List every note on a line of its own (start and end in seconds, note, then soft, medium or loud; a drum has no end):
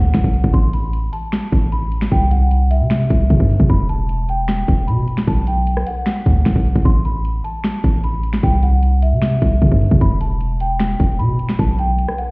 0.00 0.14 D2 loud
0.00 0.50 F#5 medium
0.14 0.24 B1 loud
0.14 finger snap medium
0.14 kick medium
0.14 snare medium
0.14 closed hi-hat medium
0.24 0.43 B1 loud
0.24 kick medium
0.34 closed hi-hat soft
0.44 0.53 B1 loud
0.44 kick medium
0.44 closed hi-hat medium
0.53 1.11 A1 loud
0.53 0.69 C6 medium
0.53 kick loud
0.53 closed hi-hat medium
0.73 1.11 B5 medium
0.73 closed hi-hat medium
0.93 closed hi-hat medium
1.13 1.68 A5 medium
1.13 closed hi-hat medium
1.32 finger snap loud
1.32 snare loud
1.32 closed hi-hat medium
1.52 2.09 A1 loud
1.52 kick medium
1.52 closed hi-hat medium
1.72 2.09 B5 medium
1.72 closed hi-hat medium
1.92 closed hi-hat medium
2.01 finger snap medium
2.01 snare loud
2.12 2.82 C2 loud
2.12 2.27 G5 medium
2.12 kick loud
2.12 closed hi-hat medium
2.31 2.68 F#5 medium
2.31 closed hi-hat medium
2.51 closed hi-hat medium
2.71 3.66 E5 medium
2.71 closed hi-hat medium
2.81 3.09 C3 loud
2.90 finger snap loud
2.90 snare loud
2.90 closed hi-hat medium
3.10 3.29 C2 loud
3.10 kick loud
3.10 closed hi-hat medium
3.30 3.39 C3 loud
3.30 kick medium
3.30 closed hi-hat medium
3.40 3.59 G2 loud
3.40 kick medium
3.50 open hi-hat medium
3.60 3.69 C3 loud
3.60 kick medium
3.70 4.64 E1 loud
3.70 3.85 B5 loud
3.70 kick loud
3.70 closed hi-hat medium
3.89 4.26 A5 medium
3.89 closed hi-hat medium
4.09 closed hi-hat medium
4.29 4.85 G5 medium
4.29 closed hi-hat medium
4.48 finger snap loud
4.48 snare loud
4.48 closed hi-hat medium
4.68 4.90 E1 loud
4.68 kick loud
4.68 closed hi-hat medium
4.87 5.07 B2 loud
4.87 5.25 B5 medium
4.87 closed hi-hat medium
5.08 closed hi-hat medium
5.17 finger snap medium
5.17 snare loud
5.28 5.84 B1 loud
5.28 5.43 A5 medium
5.28 kick loud
5.28 closed hi-hat medium
5.47 5.85 G5 medium
5.47 closed hi-hat medium
5.67 closed hi-hat medium
5.77 cross-stick medium
5.87 6.81 F#5 medium
5.87 closed hi-hat medium
6.06 finger snap loud
6.06 snare loud
6.06 closed hi-hat medium
6.26 6.45 D2 loud
6.26 kick medium
6.26 closed hi-hat medium
6.45 6.55 B1 loud
6.45 finger snap medium
6.45 kick medium
6.45 snare loud
6.45 closed hi-hat medium
6.56 6.75 B1 loud
6.56 kick medium
6.66 closed hi-hat soft
6.76 6.85 B1 loud
6.76 kick medium
6.76 closed hi-hat medium
6.85 7.42 A1 loud
6.85 7.00 C6 medium
6.85 kick loud
6.85 closed hi-hat medium
7.05 7.42 B5 medium
7.05 closed hi-hat medium
7.25 closed hi-hat medium
7.44 8.00 A5 medium
7.44 closed hi-hat medium
7.64 finger snap loud
7.64 snare loud
7.64 closed hi-hat medium
7.84 8.41 A1 loud
7.84 kick loud
7.84 closed hi-hat medium
8.04 8.41 B5 medium
8.04 closed hi-hat medium
8.23 closed hi-hat medium
8.33 finger snap medium
8.33 snare loud
8.43 9.14 C2 loud
8.43 8.58 G5 medium
8.43 kick loud
8.43 closed hi-hat medium
8.63 9.00 F#5 medium
8.63 closed hi-hat medium
8.83 closed hi-hat medium
9.02 9.97 E5 medium
9.02 closed hi-hat medium
9.12 9.40 C3 loud
9.22 finger snap loud
9.22 snare loud
9.22 closed hi-hat medium
9.42 9.61 C2 loud
9.42 kick medium
9.42 closed hi-hat medium
9.62 9.71 C3 loud
9.62 kick medium
9.62 closed hi-hat medium
9.72 9.91 G2 loud
9.72 kick medium
9.81 open hi-hat medium
9.91 10.01 C3 loud
9.91 kick medium
10.01 10.96 E1 loud
10.01 10.16 B5 loud
10.01 kick loud
10.01 closed hi-hat medium
10.21 10.58 A5 medium
10.21 closed hi-hat medium
10.41 closed hi-hat medium
10.60 11.16 G5 medium
10.60 closed hi-hat medium
10.80 finger snap loud
10.80 snare loud
10.80 closed hi-hat medium
11.00 11.21 E1 loud
11.00 kick medium
11.00 closed hi-hat medium
11.19 11.38 B2 loud
11.19 11.56 B5 medium
11.19 closed hi-hat medium
11.39 closed hi-hat medium
11.49 finger snap medium
11.49 snare loud
11.59 12.06 B1 loud
11.59 11.74 A5 medium
11.59 kick loud
11.59 closed hi-hat medium
11.79 12.16 G5 medium
11.79 closed hi-hat medium
11.99 closed hi-hat medium
12.08 cross-stick medium
12.18 12.31 F#5 medium
12.18 closed hi-hat medium